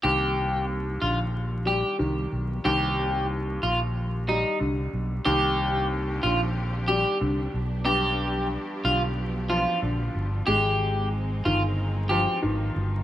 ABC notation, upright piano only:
X:1
M:4/4
L:1/8
Q:"Swing 16ths" 1/4=92
K:Cm
V:1 name="Upright piano" clef=bass
E,,3 D,2 G, E,2 | E,,4- E,, G, D,2 | E,,3 D,2 G, D, z | G,,3 D,2 F, D,2 |
A,3 E,2 F, E,2 |]